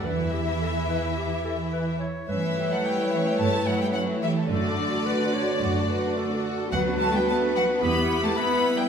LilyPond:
<<
  \new Staff \with { instrumentName = "Violin section" } { \time 4/4 \key d \major \tempo 4 = 108 e''2.~ e''8 r8 | e''8. fis''16 g''8 e''16 g''16 a''8 fis''16 g''16 fis''8 e''8 | d''2.~ d''8 r8 | fis''8 a''16 g''16 a''8 fis''8 b''8. a''16 \tuplet 3/2 { b''4 g''8 } | }
  \new Staff \with { instrumentName = "Clarinet" } { \time 4/4 \key d \major b'8 g'8 a'8 b'8 g'8 a'8 b'8 cis''8 | b'2.~ b'8 r8 | a'4 b'8 cis''8 d''8 b'8 a'4 | b'2 g'4 b'4 | }
  \new Staff \with { instrumentName = "Violin section" } { \time 4/4 \key d \major << { e'2.~ e'8 r8 | cis''1 | d''1 | b'1 | } \\ { r1 | cis'16 e'16 g'16 a'16 g'16 e'16 cis'16 e'16 g'16 a'16 g'16 e'16 cis'16 e'16 g'16 a'16 | a16 d'16 fis'16 a'16 fis'16 d'16 a16 d'16 fis'16 a'16 fis'16 d'16 a16 d'16 fis'16 a'16 | b16 d'16 fis'16 d'16 b16 d'16 fis'16 d'16 g16 b16 e'16 g'16 e'16 b16 g16 b16 | } >> }
  \new Staff \with { instrumentName = "Viola section" } { \time 4/4 \key d \major << { e2.~ e8 r8 | e'1 | fis'1~ | fis'2 e'2 | } \\ { r1 | a1~ | a1 | b1 | } >> }
  \new Staff \with { instrumentName = "Cello section" } { \clef bass \time 4/4 \key d \major e2.~ e8 r8 | e8. fis16 g8 e16 g16 a8 fis16 g16 fis8 e8 | d2.~ d8 r8 | fis8 a16 g16 a8 fis8 b8. a16 \tuplet 3/2 { b4 g8 } | }
  \new Staff \with { instrumentName = "Double bass section" } { \clef bass \time 4/4 \key d \major e,2.~ e,8 r8 | g,4 r4 g,4 r4 | fis,4 r4 fis,4 r4 | d,4 r4 e,4 r4 | }
>>